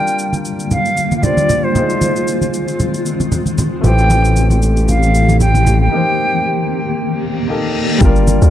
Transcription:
Already playing: D3 G3 A#3 D4 F4 A#4 G5
0.07 shaker
0.19 shaker
0.33 high conga, shaker
0.45 shaker
0.60 shaker
0.71 F5, low conga, shaker
0.85 shaker
0.97 shaker
1.11 high conga, shaker
1.17 F5
1.22 G3 D4 F4 C5 D5, low conga, shaker
1.37 high conga, shaker
1.49 low conga, shaker
1.64 C5
1.72 D#3 G3 G#3 C4 D#4, low conga, shaker
1.76 G#3 F4 C5
1.90 shaker
2.01 high conga, shaker
2.16 shaker
2.28 shaker
2.41 high conga, shaker
2.54 shaker
2.68 shaker
2.80 low conga, shaker
2.94 shaker
3.06 shaker
3.20 high conga, shaker
3.32 low conga, shaker
3.46 high conga, shaker
3.58 low conga, shaker
3.81 A1 E3 A3 G4 G5, low conga, shaker
3.85 G4 C5
3.98 shaker
4.10 high conga, shaker
4.25 shaker
4.36 shaker
4.50 high conga, shaker
4.62 shaker
4.77 shaker
4.88 F5, low conga, shaker
5.03 shaker
5.15 shaker
5.29 high conga, shaker
5.40 G5, low conga, shaker
5.54 high conga, shaker
5.67 low conga, shaker
5.81 G5
5.89 D#3 A#3 D#4
5.94 G4 C5
6.97 reverse cymbal
7.48 A#3 D#4 G4 A4
7.98 G1 G3 A#3 D4, kick, low conga, shaker
8.03 F4 A#4
8.16 shaker
8.27 high conga, shaker
8.42 D2, shaker

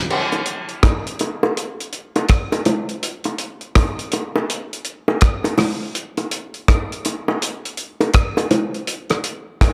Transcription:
0.10 crash
0.32 closed hi-hat, high bongo
0.46 closed hi-hat
0.69 closed hi-hat
0.83 kick, cross-stick, closed hi-hat, high bongo
1.07 closed hi-hat
1.19 closed hi-hat, high bongo
1.43 high bongo
1.57 closed hi-hat
1.80 closed hi-hat
1.93 closed hi-hat
2.16 closed hi-hat, high bongo
2.29 kick, cross-stick, closed hi-hat
2.52 closed hi-hat, high bongo
2.65 closed hi-hat, low bongo
2.89 closed hi-hat
3.03 closed hi-hat
3.24 closed hi-hat, high bongo
3.38 closed hi-hat
3.61 closed hi-hat
3.75 kick, cross-stick, closed hi-hat, high bongo
3.99 closed hi-hat
4.12 closed hi-hat, high bongo
4.36 high bongo
4.50 closed hi-hat
4.73 closed hi-hat
4.85 closed hi-hat
5.08 high bongo
5.21 kick, cross-stick, closed hi-hat
5.44 closed hi-hat, high bongo
5.58 cross-stick, open hi-hat, low bongo
5.95 closed hi-hat
6.17 closed hi-hat, high bongo
6.31 closed hi-hat
6.54 closed hi-hat
6.68 kick, cross-stick, closed hi-hat, high bongo
6.92 closed hi-hat
7.05 closed hi-hat, high bongo
7.28 high bongo
7.42 closed hi-hat
7.65 closed hi-hat
7.77 closed hi-hat
8.01 closed hi-hat, high bongo
8.14 kick, cross-stick, closed hi-hat
8.37 closed hi-hat, high bongo
8.51 closed hi-hat, low bongo
8.74 closed hi-hat
8.87 closed hi-hat
9.10 cross-stick, closed hi-hat, high bongo
9.24 closed hi-hat
9.61 kick, cross-stick, closed hi-hat, high bongo

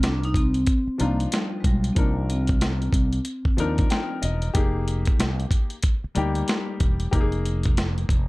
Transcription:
Already playing: C2 F3 D4 D#4 A#4
0.03 D4, snare, closed hi-hat
0.23 D#4, closed hi-hat
0.34 C4, kick, closed hi-hat
0.54 closed hi-hat
0.67 kick, closed hi-hat
0.87 muted fretless electric bass stroke
0.98 C2 F3 A#3 D4 D#4 F4, closed hi-hat
1.20 closed hi-hat
1.32 G3, snare, closed hi-hat
1.60 G#3, kick
1.64 B1 G3, closed hi-hat
1.84 closed hi-hat
1.93 F3 C4 D4, kick, closed hi-hat
1.97 C2 A#3 D#4 A#4
2.30 C4, closed hi-hat
2.47 kick, closed hi-hat
2.61 snare, closed hi-hat
2.82 closed hi-hat
2.93 C2, kick, closed hi-hat
3.13 closed hi-hat
3.25 closed hi-hat
3.45 muted fretless electric bass stroke, kick
3.57 D#2 F3 D4 D#4 A#4, closed hi-hat
3.78 kick, closed hi-hat
3.90 G5, snare, closed hi-hat
4.22 E1 D#5, closed hi-hat
4.42 closed hi-hat
4.54 F1 A#3 D#4 G4 G#4, kick, closed hi-hat
4.88 closed hi-hat
5.05 kick, closed hi-hat
5.19 C2, snare, closed hi-hat
5.40 closed hi-hat
5.51 kick, closed hi-hat
5.70 closed hi-hat
5.83 kick, closed hi-hat
6.04 muted fretless electric bass stroke
6.15 D2 G3 A#3 D#4 G4, closed hi-hat
6.35 closed hi-hat
6.48 snare, closed hi-hat
6.80 E1, kick, closed hi-hat
7.00 closed hi-hat
7.12 F1 A#3 D#4 G4, kick, closed hi-hat
7.21 G#4
7.32 closed hi-hat
7.46 closed hi-hat
7.63 kick, closed hi-hat
7.77 snare, closed hi-hat
7.98 closed hi-hat
8.09 F1, kick, closed hi-hat

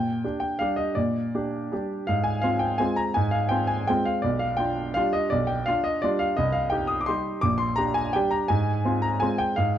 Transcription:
Already playing: A#2 G5
0.24 D4 G4
0.40 G5
0.59 G3 D4 G4 F5
0.76 D#5
0.95 A#2 D5
1.35 D4 G4
1.72 G3 D4 G4
2.07 G#2 F5
2.24 G#5
2.42 C4 F4 F5
2.59 G5
2.78 G#3 C4 F4 G#5
2.96 A#5
3.14 G#2 G#5
3.31 F5
3.49 C4 F4 G5
3.67 G#5
3.87 G#3 C4 F4 G5
4.05 F5
4.22 B1 D5
4.39 F5
4.57 D4 F4 G5
4.94 G3 D4 F4 F5
5.13 D#5
5.30 B1 D5
5.47 G5
5.66 D4 F4 F5
5.84 D#5
6.02 G3 D4 F4 D5
6.19 F5
6.37 C2 D#5
6.52 F5
6.70 D#4 G4 G5
6.87 D#6
7.01 D6
7.06 G3 D#4 G4 C6
7.41 A#1 D6
7.58 C6
7.76 D4 G4 A#5
7.94 G#5
8.13 G3 D4 G4 G5
8.31 A#5
8.48 G#2 G#5
8.85 C4 F4
9.02 A#5
9.20 G#3 C4 F4 G#5
9.38 G5
9.56 G#2 F5

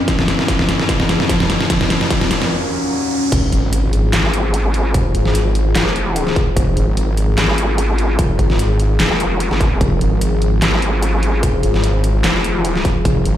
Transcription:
Already playing: F3 C#4, riser
0.08 C#2 G#2 F3, kick, snare, closed hi-hat
0.19 F2, snare
0.28 F2, snare, closed hi-hat
0.39 F2, snare
0.48 F3, kick, snare, closed hi-hat
0.59 F2, snare
0.69 F2, snare, closed hi-hat
0.80 F2, snare
0.89 F3, kick, snare, closed hi-hat
1.00 F2, snare
1.09 F2, snare, closed hi-hat
1.20 F2, snare
1.29 F3, kick, snare, closed hi-hat
1.40 F2, snare
1.50 F2, snare, closed hi-hat
1.61 F2, snare
1.70 D#2 A#2 F3 F#3, kick, snare, closed hi-hat
1.81 F2, snare
1.90 F3, snare, closed hi-hat
2.01 F2, snare
2.10 F3, kick, snare, closed hi-hat
2.21 F2, snare
2.31 F3, snare, closed hi-hat
2.42 F2, snare
3.32 F1 F3 F4 G#4 C5, kick, closed hi-hat, crash, impact
3.52 G#1, closed hi-hat
3.73 closed hi-hat
3.93 closed hi-hat
4.13 G#1, snare, clap, closed hi-hat
4.34 closed hi-hat
4.54 closed hi-hat
4.74 closed hi-hat
4.94 F1, kick, closed hi-hat
5.15 G#1, closed hi-hat
5.25 snare
5.35 closed hi-hat
5.55 closed hi-hat
5.75 F1, snare, clap, closed hi-hat
5.96 closed hi-hat
6.16 closed hi-hat
6.27 snare
6.36 kick, closed hi-hat
6.57 F1 A#4, kick, closed hi-hat
6.77 G#1, closed hi-hat
6.97 closed hi-hat
7.17 closed hi-hat
7.38 G#1, snare, clap, closed hi-hat
7.58 closed hi-hat
7.78 closed hi-hat
7.98 closed hi-hat
8.19 F1, kick, closed hi-hat
8.39 G#1, kick, closed hi-hat
8.50 snare
8.59 closed hi-hat
8.80 closed hi-hat
9.00 F1, snare, clap, closed hi-hat
9.11 F1
9.20 closed hi-hat
9.40 closed hi-hat
9.51 G#1, snare
9.61 kick, closed hi-hat
9.81 F1 C5, kick, closed hi-hat
10.01 G#1, closed hi-hat
10.21 closed hi-hat
10.42 closed hi-hat
10.62 G#1, snare, clap, closed hi-hat
10.82 closed hi-hat
11.03 closed hi-hat
11.23 closed hi-hat
11.43 F1, kick, closed hi-hat
11.63 G#1, closed hi-hat
11.74 snare
11.84 closed hi-hat
12.04 closed hi-hat
12.24 F1, snare, clap, closed hi-hat
12.44 closed hi-hat
12.65 closed hi-hat
12.76 snare
12.85 kick, closed hi-hat
13.05 F1 D#5, kick, closed hi-hat
13.25 G#1, closed hi-hat

